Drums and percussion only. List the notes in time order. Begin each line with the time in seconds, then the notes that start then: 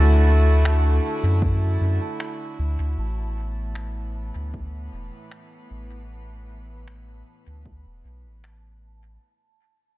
0.65 finger snap
1.42 kick
2.20 finger snap
3.75 finger snap
4.54 kick
5.31 finger snap
6.88 finger snap
7.66 kick
8.44 finger snap